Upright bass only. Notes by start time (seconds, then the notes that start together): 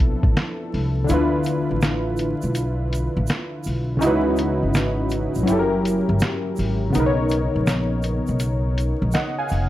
Already playing: B1
0.24 A1
0.74 C2
1.10 D2
1.71 A1
2.43 B1
3.17 A1
3.66 B1
4.03 C#2
4.63 G#1
5.36 A#1
5.49 F#1
6.09 G1
6.59 G#1
6.95 B1
7.55 A#1
8.29 B1
9.02 A#1
9.51 F1